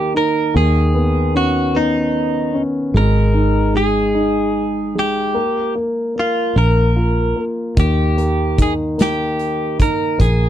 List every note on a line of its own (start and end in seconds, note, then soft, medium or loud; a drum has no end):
0.00 0.51 D#2 medium
0.00 0.51 D#3 soft
0.00 0.57 A#3 soft
0.00 0.13 D#4 soft
0.00 0.12 G4 medium
0.14 0.54 D#4 soft
0.14 0.56 A#4 medium
0.54 2.91 D#2 medium
0.54 2.90 D#3 medium
0.54 1.36 G#4 medium
0.95 1.73 B3 soft
1.35 2.53 C#4 soft
1.35 1.77 F#4 medium
1.75 2.91 B3 soft
1.75 2.61 D#4 medium
2.54 2.93 C#4 soft
2.94 5.36 G#1 medium
2.94 3.73 G#3 medium
2.94 3.76 A#4 medium
3.34 4.13 D#4 soft
3.75 4.94 G#3 soft
3.75 4.99 G#4 medium
4.15 5.32 D#4 soft
4.95 5.34 G#3 soft
4.95 5.73 G4 medium
5.34 6.52 A#1 medium
5.34 5.74 A#3 soft
5.75 6.14 A#3 soft
6.16 6.55 A#3 soft
6.16 6.59 F4 medium
6.56 7.33 A#1 medium
6.56 7.35 A#3 soft
6.56 7.44 A#4 medium
6.96 7.75 F4 soft
7.37 7.76 A#3 soft
7.77 10.16 D#2 medium
7.77 10.15 D#3 soft
7.77 8.62 G4 medium
7.77 kick medium
7.77 closed hi-hat medium
8.18 8.96 A#3 soft
8.18 closed hi-hat soft
8.58 9.77 D#4 soft
8.58 kick medium
8.58 closed hi-hat medium
8.62 8.73 G#4 medium
8.98 10.16 A#3 soft
8.98 9.77 G4 medium
8.98 snare medium
8.98 closed hi-hat medium
9.39 closed hi-hat soft
9.79 10.18 D#4 soft
9.79 10.21 A#4 medium
9.79 kick medium
9.79 closed hi-hat medium
10.19 10.49 A#1 medium
10.19 10.49 A#3 medium
10.19 10.49 G#4 medium
10.19 kick medium
10.19 closed hi-hat medium